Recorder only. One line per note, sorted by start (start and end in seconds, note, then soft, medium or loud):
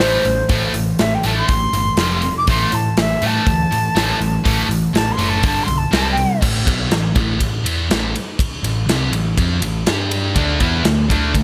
0.00 0.73 C5 loud
1.00 1.16 E5 medium
1.15 1.27 G5 loud
1.26 1.36 A5 medium
1.38 2.33 C6 loud
2.37 2.48 D6 medium
2.49 2.76 C6 loud
2.74 2.97 A5 medium
3.00 3.28 E5 loud
3.27 4.68 A5 loud
4.96 5.13 A5 loud
5.12 5.30 C6 loud
5.29 5.44 A5 loud
5.47 5.65 A5 loud
5.63 5.79 C6 medium
5.78 5.93 A5 medium
5.96 6.10 A5 loud
6.12 6.42 G5 loud